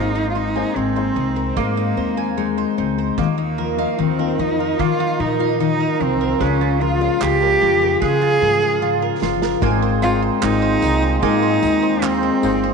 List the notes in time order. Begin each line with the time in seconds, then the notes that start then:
Already playing: G#1 G#3 A#3 C4 D#4 G#4 A#4 C5 G#5
0.15 D#4
0.30 F4
0.35 C4 D#4 C5
0.55 A#3 D#4 G#4 A#4 C5 G#5
0.76 G#1 G#3 C4 D#4
0.95 A#3 D#4 G#4 C5
1.16 C2 C4 D#4
1.36 A#4 C5
1.57 G#2 G#3 A#3, kick
1.77 D#4
1.97 D#2 C4 C5
2.17 A#4 G#5
2.37 G#3 D#4
2.57 D#4 C5
2.78 C#2 C4 D#4
2.98 A#4 C5
3.17 D#2 D#3 A#3 D#4 F4 D#5, kick
3.38 D#4
3.58 F3 A#4
3.77 A#3 D#4 F4 D#5 F5
3.98 D#2 D#3 C4 D#4
4.18 A#3 D#4 F4 A#4 F5
4.38 F2 F3 D#4
4.59 F4 A#4
4.79 D#3 A#3 F4, kick
4.99 D#4
5.20 A#2 F3 D#4 A#4
5.40 F4 F5
5.60 D#3 D#4
5.80 D#4 A#4
6.00 C2 F3 C4 D#4
6.20 F4 A#4
6.40 C#2 C#3 G#3 C#4 F4 A#4, kick
6.61 F4
6.81 F3 F4 A#4
7.00 G#3 C#4 F4 A#4 F5
7.21 C#2 C#3 F4 G4, clap
7.40 G#3 C#4 F4 A#4
7.61 F2 F3 F4
7.82 G#4 A#4
8.02 C#3 G#3 G#4, kick
8.22 F4
8.41 G#2 F3 A#4
8.62 G#4 F5
8.82 C#3 F4
9.02 F4 A#4
9.22 G1 F3 F4, snare
9.42 G#4 A#4, snare
9.61 G#1 A#2 G#3 A#3 C4 D#4 A#4 G#5, kick
9.82 C5
10.02 C4 D#4 F4, tambourine
10.22 C5
10.41 G#1 G#3 C4 D#4 A#4, clap
10.62 C5
10.82 C2 D#4 A#4, tambourine
11.02 C5
11.22 G#2 G#3 A#3 D#4 G#5, kick
11.43 C5
11.62 D#2 C4 D#4, tambourine
11.82 C5
12.02 C4 D#4, clap
12.23 C5
12.42 G1 G#3 C4 D#4 C5, tambourine
12.64 C5